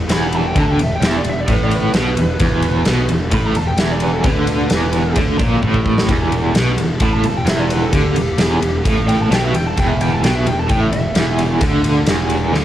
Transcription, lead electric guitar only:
0.12 0.33 B5 loud
0.36 0.45 A5 medium
0.47 0.57 G5 loud
0.61 0.71 A5 medium
0.71 0.80 G5 medium
0.83 0.95 E5 medium
0.95 1.07 G5 medium
1.07 1.15 E5 medium
1.17 1.26 D5 loud
1.30 1.40 E5 medium
1.40 1.49 D5 medium
1.52 1.63 B4 medium
1.63 1.75 D5 medium
1.75 3.07 B4 loud
3.34 3.46 B5 loud
3.46 3.56 A#5 medium
3.56 3.67 A5 loud
3.67 3.80 G5 medium
3.80 3.90 E5 medium
3.92 4.03 D5 loud
4.03 4.13 B4 medium
4.13 4.24 A4 medium
4.25 5.14 B4 loud
7.03 7.13 B5 loud
7.13 7.24 A5 medium
7.25 7.37 A5 medium
7.37 7.47 G5 medium
7.47 7.58 E5 medium
7.59 7.70 D5 loud
7.70 7.82 B4 medium
7.82 7.93 A4 loud
7.93 8.83 G4 loud
9.08 9.19 G5 loud
9.22 9.34 A5 medium
9.34 9.44 G5 loud
9.44 9.56 E5 loud
9.56 9.66 G5 medium
9.67 9.78 A5 medium
9.79 9.89 G5 loud
9.90 10.01 E5 medium
10.01 10.14 G5 medium
10.14 10.25 A5 medium
10.25 10.35 G5 medium
10.35 10.46 E5 loud
10.48 10.59 G5 medium
10.59 10.70 A5 medium
10.70 10.81 G5 medium
10.81 10.92 E5 medium
10.93 11.37 E5 loud

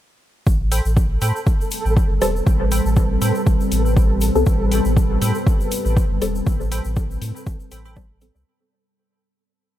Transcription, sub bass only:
0.47 0.81 A1 loud
0.85 1.18 A1 medium
1.22 1.32 A2 medium
1.85 2.04 A1 medium
2.10 2.19 G1 loud
2.22 2.42 E1 medium
2.47 2.80 A1 loud
2.85 3.18 A1 medium
3.21 3.32 A2 medium
3.47 3.57 A1 loud
3.72 4.30 A1 medium
4.35 4.44 C2 medium
4.47 4.80 A1 loud
4.85 5.18 A1 medium
5.22 5.32 A2 medium
5.85 6.04 A1 medium
6.11 6.19 G1 loud
6.22 6.42 E1 medium
6.47 6.80 A1 loud
6.85 7.18 A1 medium
7.21 7.32 A2 medium
7.47 7.57 A1 medium
7.72 8.30 A1 medium
8.35 8.44 C2 medium

